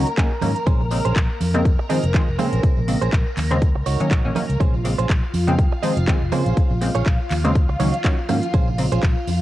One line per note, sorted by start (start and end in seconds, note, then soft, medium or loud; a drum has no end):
0.00 4.61 A#4 medium
0.00 4.61 A#5 medium
0.07 closed hi-hat medium
0.07 tambourine soft
0.17 0.26 D#3 loud
0.17 0.26 F#3 medium
0.17 0.26 A#3 medium
0.17 0.26 C#4 loud
0.17 0.31 D#4 medium
0.17 0.31 F#4 medium
0.17 0.31 G#4 medium
0.17 kick loud
0.17 clap loud
0.17 closed hi-hat medium
0.31 tambourine soft
0.42 0.52 G#2 medium
0.42 0.50 D#3 medium
0.42 0.51 F#3 medium
0.42 0.51 A#3 medium
0.42 0.51 C#4 medium
0.42 muted clean electric guitar stroke soft
0.42 cross-stick medium
0.42 open hi-hat loud
0.42 tambourine medium
0.42 high conga loud
0.56 closed hi-hat medium
0.56 tambourine soft
0.66 0.99 A#1 loud
0.66 0.81 C#4 loud
0.66 0.81 G#4 loud
0.66 0.81 C5 loud
0.66 kick loud
0.66 closed hi-hat medium
0.66 tambourine medium
0.66 low conga medium
0.80 tambourine soft
0.80 low conga medium
0.91 1.00 C#3 medium
0.91 1.00 G#3 medium
0.91 1.00 A#3 medium
0.91 1.00 C4 medium
0.91 muted clean electric guitar stroke soft
0.91 open hi-hat loud
0.91 tambourine medium
1.05 1.13 A#1 medium
1.05 1.16 C#4 medium
1.05 1.16 G#4 medium
1.05 1.16 C5 loud
1.05 closed hi-hat medium
1.15 kick loud
1.15 clap loud
1.15 closed hi-hat soft
1.15 tambourine medium
1.30 muted clean electric guitar stroke soft
1.30 tambourine soft
1.40 1.73 F2 medium
1.40 open hi-hat loud
1.40 tambourine medium
1.40 high conga medium
1.54 1.61 C#3 loud
1.54 1.61 G#3 medium
1.54 1.61 A#3 medium
1.54 1.61 C4 loud
1.54 cross-stick medium
1.54 closed hi-hat medium
1.54 tambourine soft
1.65 muted clean electric guitar stroke soft
1.65 kick loud
1.65 closed hi-hat medium
1.65 tambourine soft
1.79 muted clean electric guitar stroke loud
1.79 tambourine soft
1.89 1.98 D#3 loud
1.89 1.98 F3 medium
1.89 1.98 G#3 medium
1.89 1.98 C4 loud
1.89 2.04 F4 medium
1.89 2.04 G#4 medium
1.89 2.04 D#5 loud
1.89 open hi-hat loud
1.89 tambourine medium
2.03 2.11 F1 loud
2.03 closed hi-hat medium
2.03 tambourine soft
2.14 2.22 D#3 loud
2.14 2.23 F3 medium
2.14 2.23 G#3 medium
2.14 2.23 C4 loud
2.14 2.28 F4 medium
2.14 2.28 G#4 medium
2.14 2.28 D#5 medium
2.14 kick loud
2.14 clap loud
2.14 closed hi-hat medium
2.14 tambourine medium
2.28 2.36 F1 medium
2.28 tambourine soft
2.38 2.47 C#3 medium
2.38 2.47 G#3 medium
2.38 2.47 A#3 medium
2.38 2.47 C4 medium
2.38 2.79 C#4 medium
2.38 2.80 G#4 medium
2.38 2.80 C5 loud
2.38 muted fingered electric bass stroke soft
2.38 cross-stick medium
2.38 open hi-hat loud
2.38 tambourine loud
2.38 high conga medium
2.53 2.61 A#1 medium
2.53 closed hi-hat soft
2.53 tambourine soft
2.63 kick loud
2.63 closed hi-hat medium
2.63 tambourine medium
2.63 low conga medium
2.77 2.95 A#1 loud
2.77 tambourine soft
2.77 low conga medium
2.88 2.96 C#3 medium
2.88 2.96 G#3 medium
2.88 2.96 A#3 medium
2.88 2.97 C4 medium
2.88 muted clean electric guitar stroke soft
2.88 open hi-hat loud
2.88 tambourine medium
3.01 3.10 A#1 medium
3.01 3.13 C#4 medium
3.01 3.13 G#4 medium
3.01 3.13 C5 medium
3.01 cross-stick medium
3.01 closed hi-hat medium
3.01 tambourine soft
3.12 kick loud
3.12 clap loud
3.12 closed hi-hat soft
3.12 tambourine soft
3.26 muted clean electric guitar stroke soft
3.26 tambourine soft
3.37 3.75 D#2 medium
3.37 clap medium
3.37 open hi-hat loud
3.37 tambourine medium
3.37 high conga medium
3.51 3.57 C#3 loud
3.51 3.58 G#3 medium
3.51 3.58 A#3 medium
3.51 3.58 C4 loud
3.51 cross-stick medium
3.51 closed hi-hat medium
3.51 tambourine soft
3.62 muted clean electric guitar stroke soft
3.62 kick loud
3.62 closed hi-hat medium
3.62 tambourine soft
3.75 3.84 C#2 loud
3.75 muted clean electric guitar stroke loud
3.75 tambourine soft
3.86 3.97 C#2 medium
3.86 4.00 D#4 medium
3.86 4.00 F#4 medium
3.86 4.00 C#5 loud
3.86 open hi-hat loud
3.86 tambourine loud
4.00 4.11 D#3 medium
4.00 4.11 F#3 medium
4.00 4.11 A#3 medium
4.00 4.11 C#4 medium
4.00 closed hi-hat soft
4.00 tambourine soft
4.11 4.21 A#1 medium
4.11 4.25 D#4 medium
4.11 4.25 F#4 medium
4.11 4.25 C#5 medium
4.11 kick loud
4.11 clap loud
4.11 closed hi-hat medium
4.24 4.33 A#1 medium
4.24 4.31 D#3 loud
4.24 4.31 F#3 medium
4.24 4.32 A#3 medium
4.24 4.32 C#4 loud
4.24 tambourine soft
4.35 4.44 D#3 medium
4.35 4.44 F#3 medium
4.35 4.44 A#3 medium
4.35 4.44 C#4 medium
4.35 muted clean electric guitar stroke soft
4.35 cross-stick medium
4.35 open hi-hat loud
4.35 tambourine medium
4.35 high conga medium
4.49 4.57 C#2 medium
4.49 closed hi-hat soft
4.49 tambourine soft
4.60 4.93 A#1 loud
4.60 4.74 C#4 loud
4.60 9.42 F4 medium
4.60 4.74 G#4 medium
4.60 4.74 C5 loud
4.60 9.42 F5 medium
4.60 kick loud
4.60 closed hi-hat medium
4.60 tambourine soft
4.60 low conga medium
4.74 tambourine soft
4.74 low conga medium
4.84 4.93 C#3 medium
4.84 4.93 G#3 medium
4.84 4.93 A#3 medium
4.84 4.93 C4 medium
4.84 muted clean electric guitar stroke soft
4.84 open hi-hat loud
4.84 tambourine medium
4.98 5.07 A#1 medium
4.98 5.09 C#4 medium
4.98 5.09 G#4 medium
4.98 5.09 C5 medium
4.98 closed hi-hat medium
4.98 tambourine soft
5.09 5.20 A#1 medium
5.09 kick loud
5.09 clap loud
5.09 closed hi-hat soft
5.09 tambourine soft
5.23 muted clean electric guitar stroke soft
5.23 tambourine soft
5.34 5.66 F2 medium
5.34 open hi-hat medium
5.34 tambourine medium
5.34 high conga medium
5.47 5.54 C#3 loud
5.47 5.54 G#3 medium
5.47 5.54 A#3 medium
5.47 5.55 C4 loud
5.47 cross-stick medium
5.47 closed hi-hat medium
5.47 tambourine soft
5.59 muted clean electric guitar stroke soft
5.59 kick loud
5.59 closed hi-hat medium
5.59 tambourine soft
5.72 muted clean electric guitar stroke loud
5.72 tambourine soft
5.83 5.91 D#3 loud
5.83 5.91 F3 medium
5.83 5.92 G#3 medium
5.83 5.92 C4 loud
5.83 5.97 F4 medium
5.83 5.97 G#4 medium
5.83 5.97 D#5 loud
5.83 open hi-hat loud
5.83 tambourine medium
5.96 6.05 F1 loud
5.96 closed hi-hat soft
5.96 tambourine soft
6.07 6.16 D#3 loud
6.07 6.16 F3 medium
6.07 6.16 G#3 medium
6.07 6.16 C4 loud
6.07 6.22 F4 medium
6.07 6.22 G#4 medium
6.07 6.22 D#5 medium
6.07 kick loud
6.07 clap loud
6.07 closed hi-hat medium
6.07 tambourine medium
6.21 6.29 F1 medium
6.21 tambourine soft
6.32 6.40 C#3 medium
6.32 6.41 G#3 medium
6.32 6.41 A#3 medium
6.32 6.41 C4 medium
6.32 6.73 C#4 medium
6.32 6.73 G#4 medium
6.32 6.73 C5 loud
6.32 muted fingered electric bass stroke soft
6.32 cross-stick medium
6.32 open hi-hat medium
6.32 tambourine medium
6.32 high conga medium
6.46 6.54 A#1 medium
6.46 closed hi-hat soft
6.46 tambourine soft
6.57 kick loud
6.57 closed hi-hat medium
6.57 tambourine medium
6.57 low conga medium
6.71 6.88 A#1 loud
6.71 tambourine soft
6.71 low conga medium
6.81 6.90 C#3 medium
6.81 6.90 G#3 medium
6.81 6.90 A#3 medium
6.81 6.90 C4 medium
6.81 muted clean electric guitar stroke soft
6.81 open hi-hat loud
6.81 tambourine medium
6.95 7.03 A#1 medium
6.95 7.06 C#4 medium
6.95 7.06 G#4 medium
6.95 7.06 C#5 medium
6.95 cross-stick medium
6.95 closed hi-hat medium
6.95 tambourine soft
7.06 7.16 A#1 medium
7.06 kick loud
7.06 clap loud
7.06 closed hi-hat medium
7.06 tambourine medium
7.20 muted clean electric guitar stroke soft
7.20 tambourine soft
7.30 7.69 D#2 medium
7.30 clap medium
7.30 open hi-hat medium
7.30 tambourine medium
7.30 high conga medium
7.44 7.51 C#3 loud
7.44 7.51 G#3 medium
7.44 7.51 A#3 medium
7.44 7.51 C4 loud
7.44 cross-stick medium
7.44 closed hi-hat medium
7.44 tambourine soft
7.55 muted clean electric guitar stroke soft
7.55 kick loud
7.55 closed hi-hat medium
7.55 tambourine medium
7.69 7.77 C#2 loud
7.69 muted clean electric guitar stroke loud
7.69 tambourine soft
7.79 7.90 C#2 medium
7.79 7.88 D#3 loud
7.79 7.88 F#3 medium
7.79 7.88 A#3 medium
7.79 7.88 C#4 loud
7.79 7.94 D#4 medium
7.79 7.94 F#4 medium
7.79 7.94 C#5 loud
7.79 open hi-hat loud
7.79 tambourine medium
7.94 closed hi-hat medium
7.94 tambourine soft
8.04 8.13 D#3 medium
8.04 8.13 F#3 medium
8.04 8.13 A#3 medium
8.04 8.13 C#4 loud
8.04 8.18 D#4 medium
8.04 8.18 F#4 medium
8.04 8.18 C#5 medium
8.04 kick loud
8.04 clap loud
8.04 closed hi-hat medium
8.04 tambourine medium
8.19 tambourine soft
8.29 8.39 G#2 medium
8.29 8.37 D#3 medium
8.29 8.37 F#3 medium
8.29 8.38 A#3 medium
8.29 8.38 C#4 medium
8.29 muted clean electric guitar stroke soft
8.29 cross-stick medium
8.29 open hi-hat medium
8.29 tambourine medium
8.29 high conga medium
8.43 closed hi-hat medium
8.43 tambourine soft
8.53 8.86 A#1 loud
8.53 8.68 C#4 loud
8.53 8.68 G#4 loud
8.53 8.68 C5 loud
8.53 kick loud
8.53 closed hi-hat medium
8.53 tambourine medium
8.53 low conga medium
8.67 tambourine soft
8.67 low conga medium
8.78 8.87 C#3 medium
8.78 8.87 G#3 medium
8.78 8.87 A#3 medium
8.78 8.87 C4 medium
8.78 muted clean electric guitar stroke soft
8.78 open hi-hat loud
8.78 tambourine loud
8.92 9.00 A#1 medium
8.92 9.03 C#4 medium
8.92 9.03 G#4 medium
8.92 9.03 C5 medium
8.92 closed hi-hat medium
8.92 tambourine soft
9.03 kick loud
9.03 clap loud
9.03 closed hi-hat medium
9.03 tambourine medium
9.16 muted clean electric guitar stroke soft
9.16 tambourine soft
9.27 9.42 F2 medium
9.27 open hi-hat medium
9.27 tambourine medium
9.27 high conga medium